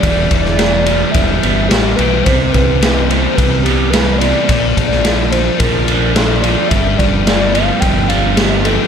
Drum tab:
RD |x-x-x-x-x-x-x-x-|x-x-x-x-x-x-x-x-|x-x-x-x-x-x-x-x-|x-x-x-x-x-x-x-x-|
SD |---oo-------o---|----o-------o---|---oo-------o---|----o-------o---|
BD |o-o-----o-------|o-o-----o-------|o-o-----o-------|o-o-----o-------|